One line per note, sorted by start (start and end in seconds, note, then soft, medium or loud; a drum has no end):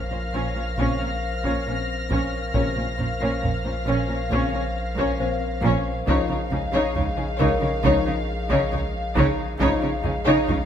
0.00 2.52 A#1 medium
0.00 0.30 A#2 medium
0.00 2.50 A#4 soft
0.00 2.50 C5 soft
0.00 2.50 F5 soft
0.00 2.51 F5 medium
0.00 5.61 F6 soft
0.00 5.60 A#6 soft
0.00 impact medium
0.11 0.19 A#2 soft
0.11 0.19 C#4 soft
0.11 0.19 C5 soft
0.33 0.43 A#1 medium
0.33 0.42 A#2 medium
0.33 0.55 C#4 medium
0.33 2.95 A#4 soft
0.33 0.54 C#5 medium
0.56 0.64 A#2 soft
0.56 0.64 C#4 soft
0.56 0.65 C#5 soft
0.78 0.86 A#1 medium
0.78 0.86 A#2 medium
0.78 1.11 C#3 medium
0.78 1.11 C4 medium
0.78 0.99 C#4 medium
0.78 0.98 C#5 medium
0.78 taiko medium
0.99 1.09 A#2 soft
0.99 1.08 C#4 medium
0.99 1.07 C#5 soft
1.43 1.52 A#2 medium
1.43 1.65 C#4 medium
1.43 1.64 C#5 medium
1.43 taiko medium
1.65 1.75 A#1 soft
1.65 1.73 A#2 soft
1.65 1.76 C#4 soft
1.65 4.28 C5 medium
1.65 1.73 C#5 soft
1.69 4.29 C4 soft
2.09 2.18 A#1 medium
2.09 2.17 A#2 medium
2.09 2.32 C#4 medium
2.09 2.31 C#5 medium
2.09 taiko medium
2.54 2.62 A#1 medium
2.54 6.03 A#1 medium
2.54 2.62 A#2 medium
2.54 2.87 C3 medium
2.54 2.87 C#3 medium
2.54 2.75 C#4 medium
2.54 6.04 A#4 soft
2.54 6.04 C5 soft
2.54 2.74 C#5 medium
2.54 6.03 F5 medium
2.54 6.04 F5 soft
2.54 taiko medium
2.75 2.84 A#2 medium
2.75 2.85 C#4 soft
2.75 2.83 C#5 soft
2.97 3.07 A#1 soft
2.97 3.06 A#2 medium
2.97 3.07 C#4 soft
2.97 3.05 C5 soft
2.97 taiko low medium
3.20 3.28 A#2 medium
3.20 3.42 C#4 medium
3.20 3.41 C#5 medium
3.42 3.51 A#1 medium
3.42 3.50 A#2 medium
3.42 3.52 C#4 soft
3.42 3.50 C#5 soft
3.42 taiko low medium
3.64 3.72 A#2 medium
3.64 3.74 C#4 soft
3.64 3.72 C5 soft
3.85 3.95 A#1 medium
3.85 3.93 A#2 medium
3.85 4.08 C#4 medium
3.85 4.08 C#5 medium
4.08 4.16 A#2 medium
4.08 4.18 C#4 soft
4.08 4.18 C#5 soft
4.29 4.39 A#1 medium
4.29 4.37 A#2 medium
4.29 4.65 C#3 medium
4.29 4.65 C4 medium
4.29 4.52 C#4 medium
4.29 4.51 C#5 medium
4.29 taiko medium
4.52 4.60 A#2 soft
4.52 4.63 C#4 medium
4.52 4.62 C#5 medium
4.96 5.04 A#2 medium
4.96 5.18 C#4 medium
4.96 5.18 C#5 medium
4.96 taiko medium
5.18 5.28 A#1 medium
5.18 5.26 A#2 soft
5.18 7.81 C4 soft
5.18 5.28 C#4 medium
5.18 7.81 C5 medium
5.18 5.28 C#5 medium
5.61 5.71 A#1 medium
5.61 5.69 A#2 medium
5.61 5.84 C#4 medium
5.61 taiko medium
5.65 5.85 C#5 medium
6.06 9.57 A#1 medium
6.06 6.15 C#2 medium
6.06 6.15 C#3 medium
6.06 6.41 F3 medium
6.06 6.40 D#4 medium
6.06 6.28 D#4 medium
6.06 9.60 G#4 medium
6.06 6.28 C#5 medium
6.06 9.60 D#5 medium
6.06 9.56 F5 medium
6.06 9.56 F5 soft
6.06 taiko medium
6.28 6.36 C#3 medium
6.28 6.39 D#4 soft
6.28 6.39 C#5 medium
6.51 6.59 C#2 medium
6.51 6.59 C#3 medium
6.51 6.60 D#4 medium
6.51 6.60 G#4 medium
6.51 taiko low medium
6.73 6.81 C#3 medium
6.73 6.94 D#4 medium
6.73 6.94 C#5 medium
6.95 7.04 C#2 medium
6.95 7.04 C#3 medium
6.95 7.04 D#4 medium
6.95 7.04 C#5 medium
6.95 taiko low medium
7.17 7.26 C#3 medium
7.17 7.26 D#4 medium
7.17 7.25 G#4 medium
7.38 7.47 C#2 medium
7.38 7.48 C#3 medium
7.38 7.60 D#4 medium
7.38 10.01 A#4 medium
7.38 7.60 C#5 medium
7.61 7.69 C#3 medium
7.61 7.69 D#4 medium
7.61 7.69 C#5 medium
7.83 7.92 C#2 medium
7.83 7.92 C#3 medium
7.83 8.18 F3 medium
7.83 8.03 D#4 medium
7.83 8.18 D#4 medium
7.83 8.04 C#5 medium
7.83 taiko medium
8.05 8.14 C#3 medium
8.05 8.13 D#4 medium
8.05 8.15 C#5 medium
8.49 8.58 C#3 loud
8.49 8.70 D#4 medium
8.49 8.70 C#5 medium
8.49 taiko medium
8.71 8.80 C#2 medium
8.71 8.80 C#3 medium
8.71 8.79 D#4 medium
8.71 8.79 C#5 medium
9.15 9.23 C#2 loud
9.15 9.24 C#3 loud
9.15 9.36 D#4 medium
9.15 9.37 C#5 medium
9.15 taiko medium
9.59 10.65 A#1 medium
9.59 9.67 C#2 medium
9.59 9.69 C#3 loud
9.59 9.95 F3 medium
9.59 9.80 D#4 medium
9.59 9.94 D#4 medium
9.59 10.65 G#4 medium
9.59 9.81 C#5 loud
9.59 10.65 D#5 medium
9.59 10.65 F5 medium
9.59 taiko medium
9.81 9.90 C#3 medium
9.81 9.89 D#4 medium
9.81 9.90 C#5 medium
10.03 10.11 C#2 medium
10.03 10.12 C#3 medium
10.03 10.12 D#4 medium
10.03 10.12 G#4 medium
10.03 taiko low medium
10.25 10.35 C#3 medium
10.25 10.47 D#4 loud
10.25 10.47 C#5 loud
10.48 10.56 C#2 medium
10.48 10.57 C#3 medium
10.48 10.56 D#4 medium
10.48 10.56 C#5 medium
10.48 taiko low medium